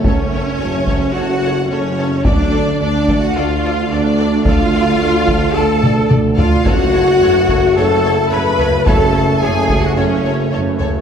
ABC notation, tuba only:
X:1
M:4/4
L:1/8
Q:1/4=109
K:F#m
V:1 name="Tuba" clef=bass
F,,,2 F,,,2 F,,,2 F,,,2 | D,,2 D,,2 D,,2 D,,2 | D,,2 D,,2 D,,2 D,,2 | F,,,2 F,,,2 F,,,2 F,,,2 |
F,,,2 F,,,2 F,,,2 F,,,2 |]